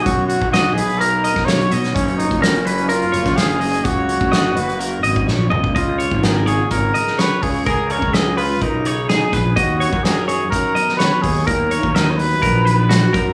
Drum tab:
HH |x-x-x-xxx-x-xxxx|xxxxxxxxxxxxxxox|x-x-x-xxx-x-----|x-x-x-x-x-x-x-o-|
SD |----o------oo--o|----o------oo---|----o-------o---|----o------oo---|
T2 |----------------|----------------|--------------o-|----------------|
BD |o--o-------o----|o--o-------o----|o--o-------o---o|o--o----o-----o-|

HH |x-x-x-o-x-x-x-x-|x-x-x-x-x-x-x-o-|x-x-x-o-x-x-x-x-|
SD |----o-------o-o-|----o------oo---|----o-------o---|
T2 |----------------|----------------|----------------|
BD |o--o----o-----o-|o--o----o-----o-|o--o----o-----o-|